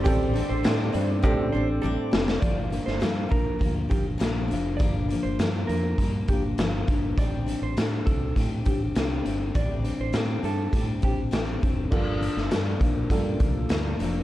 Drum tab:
CC |----------------|----------------|----------------|----------------|
HH |x-x-x-x---------|x-x-x-x-x-x-x-x-|x-x-x-x-x-x-x-x-|x-x-x-x-x-x-x-x-|
SD |----o---------oo|---oo-------o---|----o-------o---|----o-------o---|
BD |o-------o-------|o-----o-o-o-----|o-------o-o---o-|o-----o-o-o-----|

CC |----------------|x---------------|
HH |x-x-x-x-x-x-x-x-|--x-x-x-x-x-x-x-|
SD |----o-------o---|---oo-------o---|
BD |o-------o-o---o-|o-----o-o-o-----|